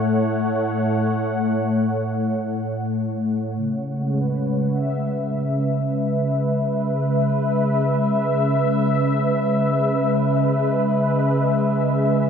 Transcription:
analog synth pad
Already playing: A2 A3 C#5 F#5
3.57 C#3
3.94 G#3
4.13 B4
4.72 E5

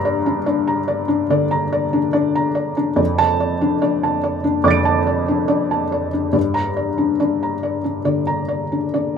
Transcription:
felt piano
Already playing: G2 D5 A#5
0.05 D5
0.26 D4
0.46 D4 D5
0.67 A#5
0.88 D5
1.08 D4
1.30 D3 D5
1.51 A#5
1.73 D5
1.93 D4
2.13 D4 D5
2.35 A#5
2.55 D5
2.77 D4
2.96 F2 D5
3.18 A5
3.40 D5
3.61 D4
3.82 D4 D5
4.03 A5
4.24 D5
4.44 D4
4.64 F2 D5 D6 A6
4.70 D7
4.85 A5
5.07 D5
5.28 D4
5.48 D4 D5
5.71 A5
5.92 D5
6.13 D4
6.33 G2 D5
6.54 A#5
6.77 D5
6.98 D4
7.20 D4 D5
7.43 A#5
7.63 D5
7.84 D4
8.05 D3 D5
8.27 A#5
8.48 D5
8.72 D4
8.94 D4 D5

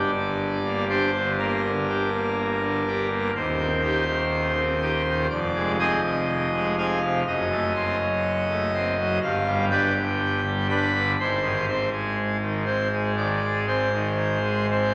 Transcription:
pipe organ
Already playing: G1 G2 D4 G4 D5
0.15 D3
0.65 A#3
0.89 D4 G4 C5
1.15 D3
1.39 A#3 A#4
1.64 D3
1.89 D4 G4
2.13 A#3
2.61 D3
2.87 D4 G4
3.10 A#3
3.35 D#1 D#2 C5
3.59 C4
3.82 D#4 G4
4.08 D#3
4.57 C4
4.81 D#4 G4
5.07 D#3
5.30 F1 F2 D5
5.55 G#3
5.79 C4 G#4 D#5
6.04 C3
6.53 G#3
6.78 C4 G#4 F5
7.02 C3
7.27 F#1 F#2 D#5
7.51 A3
7.75 C4 C5
8.00 F#3
8.50 A3
8.74 C4 C5
8.98 F#3
9.23 G1 G2 F5
9.47 G3
9.71 D4 B4 G5
9.96 D3
10.45 G3
10.70 D4 B4 B5
10.94 D3
11.19 G#1 G#2 C5
11.43 D#3
11.67 C4 C5
11.92 G#3
12.41 D#3
12.65 C4 C5
12.92 G#3
13.17 D#3 D5
13.44 G#3
13.67 C4 C5
13.93 D#3
14.43 G#3
14.69 C4 C5

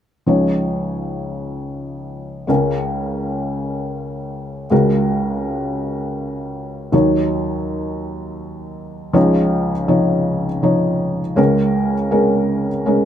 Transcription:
felt piano
0.26 C#2 C#3 F3 D#4 C#5
2.47 C#2 C#3 G#3 C#4 A#4
4.70 C#2 C#3 G#3 F#4 A#4
6.92 D#2 D#3 F#3 D#4 C#5
9.13 C#2 C#3 F3 D#4 C#5
9.88 F3 D#4 C#5
10.63 F3 D#4 C#5
11.36 C#2 C#3 G#3 C#4 A#4
12.11 G#3 C#4 A#4
12.86 G#3 C#4 A#4

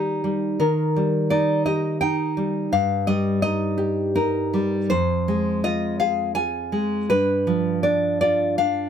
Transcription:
nylon-string guitar
Already playing: D#3 G3 D#4 G4
0.24 G3
0.60 D#3 A#4
0.96 G3
1.30 D#4 D5
1.66 G4 D#5
2.01 D#4 G5
2.37 G3
2.72 G2 F5
3.07 G3 D#5
3.42 D#4 D#5
3.78 G4
4.15 D#4 A#4
4.54 G3
4.90 F2 C5
5.28 G#3
5.64 F4 D#5
6.00 G#4 F5
6.35 F4 G#5
6.72 G#3
7.10 G2 B4
7.47 F3
7.83 D4 D5
8.21 F4 D5
8.58 D4 F5

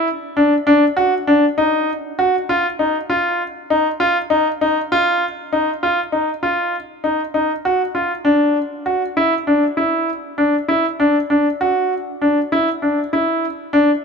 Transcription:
grand piano
0.37 D4
0.67 D4
0.97 F#4
1.27 D4
1.58 D#4
2.19 F#4
2.49 F4
2.79 D#4
3.10 F4
3.70 D#4
4.00 F4
4.30 D#4
4.61 D#4
4.92 F4
5.53 D#4
5.83 F4
6.12 D#4
6.43 F4
7.04 D#4
7.34 D#4
7.65 F#4
7.95 F4
8.25 D4
8.86 F#4
9.17 E4
9.47 D4
9.77 E4
10.38 D4
10.68 E4
11.00 D4
11.30 D4
11.61 F#4
12.22 D4
12.52 E4
12.82 D4
13.13 E4
13.73 D4

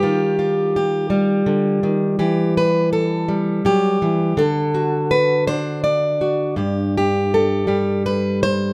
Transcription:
steel-string acoustic guitar
Already playing: G3 G4
0.03 D#3 F4
0.39 F4
0.76 G4
1.10 G3
1.46 D3
1.83 D#3
2.19 E3 G4
2.57 B4
2.93 A4
3.28 G3
3.65 F#3 G4
4.02 E3
4.37 D3 A4
4.74 F#4
5.11 B4
5.47 D4 C5
5.84 D5
6.21 F#4
6.56 G2 G4
6.98 G4
7.34 A4
7.67 G3 G4
8.06 B4
8.43 C5

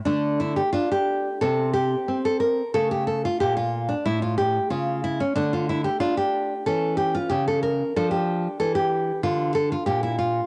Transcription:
nylon-string guitar
0.05 D3 A3 D4
0.40 E4
0.56 G4
0.73 D4 F4
0.91 G4
1.41 C3 C4 A4
1.73 G4
2.08 C4
2.25 A4
2.40 A#4
2.74 C#3 A3 A4
2.91 G4
3.07 A4
3.25 F4
3.40 A#2 G4
3.57 F4
3.89 D4
4.06 A2 E4
4.22 F4
4.38 G4
4.70 C#3 F4
5.04 E4
5.20 C#4
5.36 D3 A3 D4
5.53 F4
5.69 E4
5.84 G4
6.00 D4 F4
6.17 G4
6.66 E3 C#4 A4
6.97 G4
7.15 F4
7.30 C#3 G4
7.48 A4
7.63 A#4
7.96 F3 D4 A4
8.11 G4
8.60 E3 A4
8.75 G4
9.23 D3 F4
9.55 A4
9.72 F4
9.86 A#2 G4
10.03 E4
10.18 F4

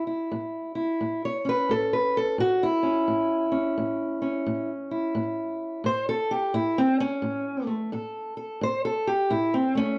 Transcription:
steel-string acoustic guitar
Already playing: A2
0.07 E4
0.32 A2
0.75 E4
1.01 A2
1.25 C#5
1.45 C#4
1.49 B4
1.69 A2 A4
1.93 B4
2.17 A4
2.38 A2 F#4
2.63 E4
2.83 C#4
3.08 A2
3.52 C#4
3.78 A2
4.22 C#4
4.46 A2
4.91 E4
5.15 A2
5.84 A2 C5
6.09 A4
6.31 G4
6.54 A2 E4
6.78 C4
7.00 C#4
7.22 A2
7.67 A3
7.92 A2 A4
8.37 A4
8.61 A2 C5
8.85 A4
9.07 G4
9.30 A2 E4
9.54 C4
9.75 A3 C#4

